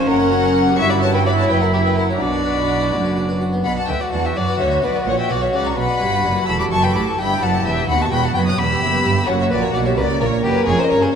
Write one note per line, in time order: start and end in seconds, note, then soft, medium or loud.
0.00 0.79 C#4 medium
0.07 0.78 F#1 medium
0.07 0.75 F#2 medium
0.07 0.78 F#2 medium
0.07 0.78 A#4 loud
0.07 0.16 A#4 medium
0.07 0.77 F#5 loud
0.20 0.32 F#4 medium
0.31 0.55 F#4 medium
0.31 0.44 C#5 medium
0.44 0.56 A#4 medium
0.55 0.67 F#4 medium
0.55 1.48 F#4 medium
0.67 0.79 G4 medium
0.78 1.50 G1 medium
0.78 1.45 G2 medium
0.78 1.50 G2 medium
0.78 2.21 E4 medium
0.78 0.91 E5 loud
0.78 0.90 C#6 loud
0.90 1.03 D4 medium
0.90 1.01 D5 medium
0.90 1.03 B5 medium
1.02 1.14 B4 medium
1.02 1.07 C#5 medium
1.02 1.14 A5 loud
1.14 1.27 D4 medium
1.14 1.19 B4 medium
1.14 1.26 G5 loud
1.25 1.38 B3 medium
1.25 1.31 D5 medium
1.25 1.38 B5 loud
1.38 1.50 C#4 medium
1.38 1.52 C#5 medium
1.38 1.50 A5 loud
1.49 2.20 F#1 medium
1.49 2.17 F#2 medium
1.49 2.20 F#2 medium
1.49 2.21 E4 medium
1.49 1.63 B4 medium
1.49 1.61 G5 loud
1.62 1.74 E4 medium
1.62 1.73 A#4 medium
1.62 1.66 F#5 medium
1.73 1.78 G4 medium
1.73 1.86 C#5 medium
1.73 1.85 E5 medium
1.85 1.98 A#4 medium
1.85 1.98 B4 medium
1.85 1.97 G5 loud
1.96 2.10 E4 medium
1.96 2.11 A#4 medium
1.96 2.09 F#5 medium
2.09 2.22 F#4 soft
2.09 2.20 C#5 medium
2.09 2.22 A#5 medium
2.21 2.92 B1 medium
2.21 2.89 B2 medium
2.21 2.92 B2 medium
2.21 3.45 D4 medium
2.21 3.42 F#4 medium
2.21 3.39 D5 medium
2.21 3.41 B5 loud
2.33 2.46 D4 soft
2.45 2.58 B4 medium
2.57 2.70 F#4 medium
2.68 2.81 D4 medium
2.80 2.93 E4 soft
2.92 3.65 F#1 medium
2.92 3.61 F#2 medium
2.92 3.65 F#2 medium
2.92 3.05 D4 medium
3.05 3.18 B4 medium
3.16 3.29 F#4 medium
3.29 3.42 B4 medium
3.41 3.54 F#4 medium
3.53 3.65 B3 soft
3.64 3.73 B1 medium
3.64 3.86 B2 medium
3.64 3.73 B2 medium
3.64 5.73 F#4 medium
3.64 7.14 F#4 medium
3.64 3.76 F#5 medium
3.64 3.76 B5 loud
3.76 3.89 D4 medium
3.76 3.89 F#5 medium
3.76 3.89 A5 medium
3.88 3.97 D2 medium
3.88 3.97 D3 medium
3.88 4.10 D3 medium
3.88 4.01 B4 medium
3.88 4.02 E5 medium
3.88 4.01 G5 loud
4.00 4.13 F#4 medium
4.00 4.12 D5 medium
4.00 4.13 F#5 medium
4.12 4.36 E2 medium
4.12 4.34 E3 medium
4.12 4.36 E3 medium
4.12 4.25 D4 medium
4.12 4.27 F#5 medium
4.12 4.24 A5 medium
4.24 4.36 E4 soft
4.24 4.38 E5 medium
4.24 4.36 G5 medium
4.36 4.44 F#2 medium
4.36 4.57 F#3 medium
4.36 4.44 F#3 medium
4.36 4.48 D4 medium
4.36 4.60 D5 medium
4.36 4.60 F#5 loud
4.48 4.60 B4 medium
4.59 4.83 D2 medium
4.59 4.83 D3 medium
4.59 4.81 D3 medium
4.59 4.72 F#4 medium
4.59 4.86 C#5 medium
4.59 4.83 E5 loud
4.71 4.83 B4 medium
4.82 4.91 B1 medium
4.82 5.04 B2 medium
4.82 4.91 B2 medium
4.82 4.95 F#4 medium
4.82 5.07 B4 medium
4.82 5.06 D5 medium
4.94 5.06 B3 soft
5.05 5.14 A#1 medium
5.05 5.27 A#2 medium
5.05 5.15 A#2 medium
5.05 5.19 C#5 medium
5.05 5.18 F#5 medium
5.17 5.30 C#4 medium
5.17 5.32 E5 medium
5.17 5.30 G5 medium
5.29 5.54 B1 medium
5.29 5.51 B2 medium
5.29 5.54 B2 medium
5.29 5.42 C#5 medium
5.29 5.43 D5 medium
5.29 5.42 F#5 loud
5.42 5.54 F#4 medium
5.42 5.56 C#5 medium
5.42 5.54 E5 medium
5.53 5.77 C#2 medium
5.53 5.75 C#3 medium
5.53 5.77 C#3 medium
5.53 5.66 C#4 medium
5.53 5.68 D5 medium
5.53 5.65 F#5 medium
5.65 5.77 D4 soft
5.65 5.78 A#5 medium
5.65 5.78 C#6 medium
5.77 5.85 B1 medium
5.77 5.98 B2 medium
5.77 5.85 B2 medium
5.77 6.48 B4 medium
5.77 6.47 F#5 medium
5.77 6.46 B5 loud
5.88 6.01 D4 medium
6.00 6.24 G1 medium
6.00 6.22 G2 medium
6.00 6.24 G2 medium
6.00 6.13 B4 medium
6.12 6.25 F#4 medium
6.24 6.32 F#1 medium
6.24 6.45 F#2 medium
6.24 6.33 F#2 medium
6.24 6.37 D4 medium
6.36 6.48 E4 soft
6.47 6.71 E1 medium
6.47 6.69 E2 medium
6.47 6.71 E2 medium
6.47 7.17 A4 medium
6.47 6.59 B5 medium
6.47 6.59 E6 loud
6.59 6.72 G4 medium
6.59 6.65 B5 medium
6.59 6.64 D6 loud
6.71 6.94 F#1 medium
6.71 6.93 F#2 medium
6.71 6.95 F#2 medium
6.71 6.84 E5 medium
6.71 6.85 A5 medium
6.71 6.83 C#6 loud
6.83 6.95 B4 medium
6.83 6.97 G5 medium
6.83 6.95 B5 loud
6.94 7.02 A1 medium
6.94 7.16 A2 medium
6.94 7.04 A2 medium
6.94 7.07 G4 medium
6.94 7.06 B5 medium
6.94 7.06 D6 loud
7.07 7.19 A4 soft
7.07 7.20 A5 medium
7.07 7.19 C#6 medium
7.17 7.41 G1 medium
7.17 7.41 G2 medium
7.17 7.40 G2 medium
7.17 7.87 E4 medium
7.17 7.89 G4 medium
7.17 7.31 G4 medium
7.17 7.44 G5 loud
7.17 7.41 B5 loud
7.30 7.43 E5 medium
7.42 7.65 F#1 medium
7.42 7.65 F#2 medium
7.42 7.63 F#2 medium
7.42 7.54 B4 medium
7.42 7.66 F#5 medium
7.42 7.65 A5 loud
7.54 7.66 E5 medium
7.65 7.88 E1 medium
7.65 7.88 E2 medium
7.65 7.86 E2 medium
7.65 7.78 B4 medium
7.65 7.88 E5 medium
7.65 7.89 G5 loud
7.78 7.89 E4 medium
7.87 8.11 D#2 medium
7.87 8.10 D#2 medium
7.87 8.56 B3 medium
7.87 8.56 F#4 medium
7.87 8.04 F#5 loud
7.87 8.00 B5 loud
8.01 8.13 F#4 medium
8.01 8.12 A5 medium
8.01 8.12 C#6 loud
8.11 8.34 E1 medium
8.11 8.35 E2 medium
8.11 8.33 E2 medium
8.11 8.24 B4 medium
8.11 8.26 G5 medium
8.11 8.23 B5 loud
8.24 8.36 F#4 medium
8.24 8.34 F#5 medium
8.24 8.36 A5 medium
8.34 8.58 F#1 medium
8.34 8.58 F#2 medium
8.34 8.57 F#2 medium
8.34 8.48 B3 medium
8.34 8.39 G5 medium
8.34 8.47 B5 loud
8.47 8.59 C#4 soft
8.47 8.61 D#6 medium
8.47 8.53 F#6 loud
8.57 8.81 E1 medium
8.57 8.81 E2 medium
8.57 8.80 E2 medium
8.57 9.26 B3 medium
8.57 9.28 G4 medium
8.57 9.28 B5 loud
8.57 9.27 E6 loud
8.72 8.83 G4 medium
8.81 9.05 F#1 medium
8.81 9.04 F#2 medium
8.81 9.03 F#2 medium
8.81 8.95 E5 medium
8.94 9.06 B4 medium
9.04 9.13 G1 medium
9.04 9.26 G2 medium
9.04 9.13 G2 medium
9.04 9.17 G4 medium
9.17 9.28 A4 soft
9.27 9.51 F#1 medium
9.27 9.49 F#2 medium
9.27 9.51 F#2 medium
9.27 9.96 A#3 medium
9.27 9.96 F#4 medium
9.27 9.39 C#5 medium
9.27 9.40 F#5 loud
9.39 9.52 F#4 medium
9.39 9.52 C#5 medium
9.39 9.45 E5 loud
9.50 9.74 A#1 medium
9.50 9.72 A#2 medium
9.50 9.75 A#2 medium
9.50 9.63 B4 medium
9.50 9.64 C#5 medium
9.50 9.63 D5 loud
9.62 9.73 A#4 medium
9.62 9.76 A#4 medium
9.62 9.75 C#5 medium
9.73 9.97 B1 medium
9.73 9.96 B2 medium
9.73 9.98 B2 medium
9.73 9.87 F#4 medium
9.73 9.78 D5 medium
9.73 9.87 F#5 medium
9.85 9.98 G4 soft
9.85 9.90 C#5 medium
9.85 9.98 E5 loud
9.97 10.21 C#2 medium
9.97 10.19 C#3 medium
9.97 10.22 C#3 medium
9.97 10.66 A#3 medium
9.97 10.10 F#4 medium
9.97 11.15 A#4 medium
9.97 10.05 B4 loud
9.97 10.21 D5 loud
10.10 10.22 C#5 medium
10.21 10.45 A#1 medium
10.21 10.43 A#2 medium
10.21 10.45 A#2 medium
10.21 10.29 A#4 medium
10.21 10.34 A#4 medium
10.21 10.45 C#5 loud
10.33 10.45 C#5 medium
10.43 10.52 F#1 medium
10.43 10.65 F#2 medium
10.43 10.53 F#2 medium
10.43 10.66 G4 medium
10.43 10.57 A#4 medium
10.43 10.68 B4 loud
10.56 10.68 C#4 medium
10.66 10.75 F1 medium
10.66 10.89 F2 medium
10.66 10.77 F2 medium
10.66 11.15 C#4 medium
10.66 10.81 G#4 loud
10.66 10.80 C#5 loud
10.79 10.91 G#4 medium
10.79 10.90 C5 medium
10.79 10.92 D#5 loud
10.90 10.99 G1 medium
10.90 11.12 G2 medium
10.90 11.01 G2 medium
10.90 11.03 A#4 loud
10.90 11.02 C#5 loud
10.90 11.03 C#5 medium
11.02 11.13 G#4 medium
11.02 11.15 G#4 medium
11.02 11.14 C5 loud